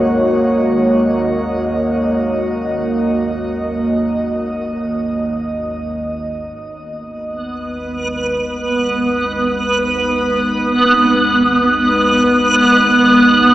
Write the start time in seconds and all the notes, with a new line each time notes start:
Already playing: G#1 D#2 G#2 A#3 F#4 C#5 D#5
6.55 G#1 D#2 G#3 B3
7.81 D#4
9.17 B4